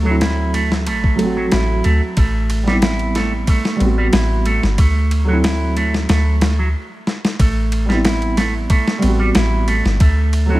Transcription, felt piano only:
0.02 1.14 F#3 medium
0.02 1.15 A3 medium
0.08 1.17 C4 medium
0.08 1.18 E4 medium
1.16 2.14 F#3 medium
1.16 2.15 A3 medium
1.21 2.17 C4 medium
1.21 2.18 F#4 loud
2.63 3.74 G3 medium
2.63 3.76 B3 medium
2.69 3.78 C4 medium
2.69 3.79 E4 medium
3.76 4.74 G3 medium
3.76 4.76 B3 medium
3.82 4.77 C4 medium
3.82 4.79 F#4 medium
5.24 6.36 F#3 medium
5.24 6.37 A3 medium
5.30 6.39 C4 medium
5.30 6.40 E4 medium
7.86 8.97 G3 medium
7.86 8.98 B3 medium
7.91 9.00 C4 medium
7.91 9.01 E4 medium
8.98 9.96 G3 medium
8.98 9.98 B3 medium
9.04 9.99 C4 medium
9.04 10.01 F#4 medium
10.46 10.60 F#3 medium
10.46 10.60 A3 medium
10.51 10.60 C4 medium
10.51 10.60 E4 medium

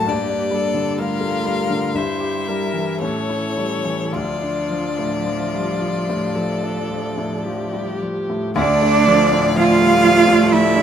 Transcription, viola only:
0.00 0.11 F#4 medium
0.09 0.56 G4 medium
0.54 1.02 A4 medium
1.00 1.99 A#4 medium
1.98 2.50 C5 medium
2.49 3.01 A#4 medium
3.01 4.15 A4 medium
4.14 5.15 F4 medium
5.26 6.37 F4 medium
6.35 7.45 A4 medium
7.44 8.54 G4 medium
8.55 9.52 A3 medium
9.57 10.82 A3 medium

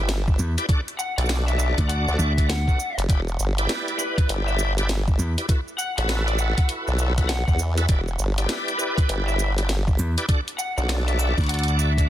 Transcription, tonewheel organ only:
0.58 0.66 E4 medium
0.58 0.66 G4 medium
0.58 0.66 B4 medium
0.58 0.66 D5 medium
0.69 0.81 D4 loud
0.69 0.81 F#4 medium
0.69 0.81 A4 medium
0.69 0.81 D5 loud
1.18 2.33 D4 medium
1.18 2.33 F#4 medium
1.18 2.33 A4 medium
1.18 2.33 D5 medium
2.38 2.49 D4 medium
2.38 2.49 F#4 medium
2.38 2.49 A4 medium
2.38 2.49 D5 medium
2.68 2.79 D4 medium
2.68 2.79 F#4 medium
2.68 2.79 A4 medium
2.68 2.79 B4 loud
3.09 3.21 E4 loud
3.09 3.21 G4 medium
3.09 3.21 B4 medium
3.09 3.21 D5 loud
3.58 4.74 E4 medium
3.58 4.74 G4 medium
3.58 4.74 B4 medium
3.58 4.73 D5 medium
4.78 4.89 E4 medium
4.78 4.89 G4 medium
4.78 4.89 B4 medium
4.78 4.89 D5 loud
5.38 5.46 E4 medium
5.38 5.46 G4 medium
5.38 5.46 B4 medium
5.38 5.46 D5 medium
5.49 5.61 E4 loud
5.49 5.61 F#4 medium
5.49 5.61 A4 medium
5.49 5.61 B4 loud
5.98 7.13 E4 medium
5.98 7.13 F#4 medium
5.98 7.13 A4 medium
5.98 7.13 B4 medium
7.18 7.29 E4 medium
7.18 7.29 F#4 medium
7.18 7.29 A4 medium
7.18 7.29 B4 loud
7.78 7.86 E4 medium
7.78 7.86 F#4 medium
7.78 7.86 A4 medium
7.78 7.86 B4 medium
7.89 8.01 E4 loud
7.89 8.01 G4 medium
7.89 8.01 B4 medium
7.89 8.01 D5 loud
8.38 9.53 E4 medium
8.38 9.53 G4 medium
8.38 9.53 B4 medium
8.38 9.53 D5 medium
9.58 9.69 E4 medium
9.58 9.69 G4 medium
9.58 9.69 B4 medium
9.58 9.69 D5 loud
10.17 10.26 E4 medium
10.17 10.26 G4 medium
10.17 10.26 B4 medium
10.17 10.26 D5 medium
10.29 10.41 D4 loud
10.29 10.41 F#4 medium
10.29 10.41 A4 medium
10.29 10.41 D5 loud
10.78 11.93 D4 medium
10.78 11.93 F#4 medium
10.78 11.93 A4 medium
10.78 11.93 D5 medium
11.98 12.09 D4 medium
11.98 12.09 F#4 medium
11.98 12.09 A4 medium
11.98 12.09 D5 loud

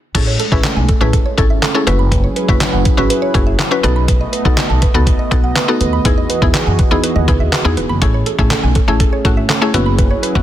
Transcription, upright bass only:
0.15 0.34 A1 loud
0.52 0.61 A1 medium
0.76 0.86 B1 medium
1.01 1.10 A1 medium
1.38 1.57 G#1 medium
1.87 2.25 F#1 loud
2.48 2.58 F#1 loud
2.73 2.83 F#1 medium
2.98 3.07 G#1 medium
3.35 3.54 F#1 medium
3.84 4.22 B1 loud
4.45 4.55 B1 loud
4.70 4.79 B1 medium
4.94 5.04 C#2 medium
5.31 5.50 B1 medium
5.81 6.00 D#2 medium
6.05 6.24 E2 loud
6.42 6.51 E2 medium
6.67 6.76 F#2 medium
6.91 7.01 E2 medium
7.16 7.25 D#2 medium
7.28 7.38 C#2 medium
7.41 7.50 D#2 medium
7.65 7.74 E2 medium
7.77 7.87 E1 medium
7.90 7.99 F#1 medium
8.02 8.21 A1 loud
8.39 8.48 A1 medium
8.63 8.73 B1 medium
8.88 8.97 A1 medium
9.25 9.44 G#1 medium
9.74 10.12 F#1 loud
10.35 10.43 F#1 loud

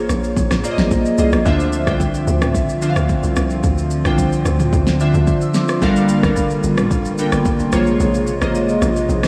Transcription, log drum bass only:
0.09 0.36 A#1 loud
0.37 0.50 A#1 medium
0.51 0.63 A#1 medium
0.78 0.91 A1 medium
0.91 1.05 A#1 medium
1.18 1.32 C2 loud
1.32 1.45 A#1 medium
1.46 1.86 D2 loud
1.87 2.26 C2 medium
2.27 2.56 D2 loud
2.54 2.95 C2 medium
2.96 3.09 D2 medium
3.23 3.36 C2 medium
3.36 3.63 C2 medium
3.64 4.04 D2 loud
4.05 4.44 C2 medium
4.45 4.72 D2 loud
4.73 5.13 D2 loud
5.14 5.27 D2 medium
5.82 6.22 G1 loud
6.23 6.62 F1 medium
6.64 6.92 G1 loud
6.91 7.31 F1 medium
7.32 7.45 G1 medium
7.60 7.72 F1 medium
7.73 7.99 A#1 loud
8.00 8.40 A#1 loud
8.41 8.81 A1 medium
8.82 9.08 A#1 loud
9.09 9.28 A#1 loud

